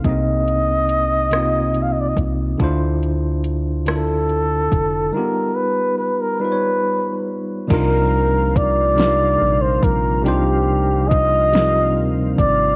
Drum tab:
CC |------|------|------|x-----|
HH |xxxxxx|xxxxxx|------|x-xx-x|
SD |---r--|---r--|------|---o--|
BD |o----o|o----o|------|o-o--o|

CC |------|
HH |x-xx-x|
SD |---o--|
BD |--o--o|